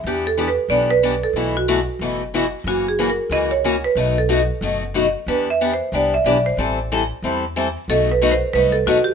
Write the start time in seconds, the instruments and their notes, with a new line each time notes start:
0.03 upright bass E2, steel-string acoustic guitar E3 B3 D4 G4, marimba G4
0.27 marimba A4
0.37 steel-string acoustic guitar E3 B3 D4 G4
0.48 marimba B4
0.68 upright bass B1, steel-string acoustic guitar E3 B3 D4 G4, marimba D5
0.91 marimba B4
1.03 steel-string acoustic guitar E3 B3 D4 G4
1.23 marimba A4
1.33 upright bass B1, steel-string acoustic guitar B2 E3 A3 E4 F#4
1.57 marimba F#4
1.68 steel-string acoustic guitar B2 E3 A3 E4 F#4
1.99 upright bass F#1, steel-string acoustic guitar B2 E3 A3 E4 F#4
2.34 steel-string acoustic guitar B2 E3 A3 E4 F#4
2.64 upright bass F#1, steel-string acoustic guitar C#3 E3 A#3 C#4 F#4, marimba F#4
2.88 marimba G#4
2.99 steel-string acoustic guitar C#3 E3 A#3 C#4 F#4
3.10 marimba A#4
3.30 upright bass C#2, steel-string acoustic guitar C#3 E3 A#3 C#4 F#4, marimba D#5
3.51 marimba C#5
3.64 steel-string acoustic guitar C#3 E3 A#3 C#4 F#4
3.84 marimba B4
3.95 upright bass B1, steel-string acoustic guitar B2 F#3 A3 D#4 F#4
4.18 marimba A4
4.29 steel-string acoustic guitar B2 F#3 A3 D#4 F#4
4.61 upright bass F#1, steel-string acoustic guitar B2 F#3 A3 D#4 F#4
4.94 steel-string acoustic guitar B2 F#3 A3 D#4 F#4
5.26 upright bass E2, steel-string acoustic guitar E3 B3 D4 G4, marimba B4
5.50 marimba E5
5.61 steel-string acoustic guitar E3 B3 D4 G4
5.74 marimba C5
5.92 upright bass C2, steel-string acoustic guitar E3 B3 D4 G4, marimba D5
6.14 marimba E5
6.24 upright bass B1, steel-string acoustic guitar E3 B3 D4 G4, marimba D5
6.46 marimba C5
6.57 upright bass A1, steel-string acoustic guitar E3 G3 C4 E4 A4
6.92 steel-string acoustic guitar E3 G3 C4 E4 A4
7.22 upright bass E2, steel-string acoustic guitar E3 G3 C4 E4 A4
7.56 steel-string acoustic guitar E3 G3 C4 E4 A4
7.88 upright bass B1, steel-string acoustic guitar B2 F#3 A3 D#4 F#4, marimba A4
8.12 marimba B4
8.21 steel-string acoustic guitar B2 F#3 A3 D#4 F#4
8.31 marimba C5
8.53 upright bass C2, steel-string acoustic guitar B2 F#3 A3 D#4 F#4, marimba B4
8.72 marimba A4
8.86 upright bass D#2, steel-string acoustic guitar B2 F#3 A3 D#4 F#4, marimba F#4
9.04 marimba G4